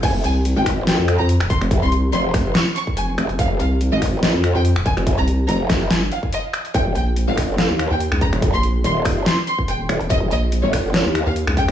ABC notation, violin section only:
X:1
M:4/4
L:1/16
Q:"Swing 16ths" 1/4=143
K:Fm
V:1 name="Violin section"
a2 a2 z g2 z g2 z b2 z c'2 | z c'2 z c'3 z d'2 d'2 a3 z | f2 f2 z e2 z e2 z g2 z a2 | z b2 z b3 z a2 f2 e3 z |
g2 g2 z f2 z f2 z g2 z b2 | z c'2 z c'3 z c'2 c'2 g3 z | e2 e2 z d2 z d2 z f2 z g2 |]